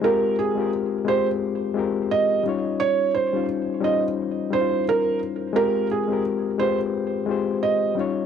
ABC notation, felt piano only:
X:1
M:4/4
L:1/16
Q:"Swing 16ths" 1/4=87
K:Ab
V:1 name="Felt piano"
B2 A2 z2 c z4 z e2 z2 | d2 c2 z2 e z3 c2 B2 z2 | B2 A2 z2 c z4 z e2 z2 |]